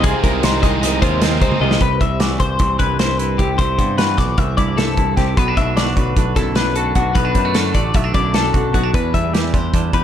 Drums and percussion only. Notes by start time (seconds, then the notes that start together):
0.04 kick, closed hi-hat
0.24 kick, closed hi-hat
0.43 snare, closed hi-hat
0.63 kick, closed hi-hat
0.83 snare, closed hi-hat
1.02 kick, closed hi-hat
1.22 snare, closed hi-hat
1.41 kick, closed hi-hat
1.51 high tom
1.71 snare
1.80 kick, closed hi-hat
2.01 kick, closed hi-hat
2.20 snare, closed hi-hat
2.40 kick, closed hi-hat
2.59 kick, closed hi-hat
2.79 kick, closed hi-hat
2.99 snare, closed hi-hat
3.19 closed hi-hat
3.39 kick, closed hi-hat
3.59 kick, closed hi-hat
3.79 kick, closed hi-hat
3.98 snare, closed hi-hat
4.18 kick, snare, closed hi-hat
4.38 kick, closed hi-hat
4.58 kick, closed hi-hat
4.78 snare, closed hi-hat
4.97 kick, closed hi-hat
5.17 kick, snare, closed hi-hat
5.37 kick, closed hi-hat
5.57 kick, closed hi-hat
5.77 snare, closed hi-hat
5.97 kick, closed hi-hat
6.17 kick, closed hi-hat
6.36 kick, snare, closed hi-hat
6.55 snare, closed hi-hat
6.76 closed hi-hat
6.95 kick, closed hi-hat
7.15 kick, closed hi-hat
7.35 kick, closed hi-hat
7.54 snare, closed hi-hat
7.74 kick, closed hi-hat
7.94 kick, closed hi-hat
8.14 kick, closed hi-hat
8.34 snare, closed hi-hat
8.54 kick, closed hi-hat
8.74 kick, closed hi-hat
8.94 kick, closed hi-hat
9.14 kick, closed hi-hat
9.34 snare, closed hi-hat
9.54 kick, closed hi-hat
9.74 kick, closed hi-hat
9.93 kick, closed hi-hat